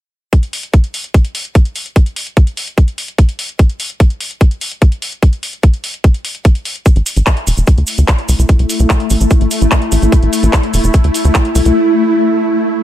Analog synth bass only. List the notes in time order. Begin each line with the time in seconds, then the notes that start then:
6.96 A1
7.16 A1
7.47 E1
7.57 E1
7.78 D2
7.98 D2
8.29 C2
8.39 C2
8.59 C2
8.80 C2
9.10 A1
9.21 A1
9.41 A1
9.61 A1
9.92 A1
10.02 A1
10.23 A1
10.43 A1
10.74 E1
10.84 E1
11.04 D2
11.25 D2
11.55 C2
11.65 C2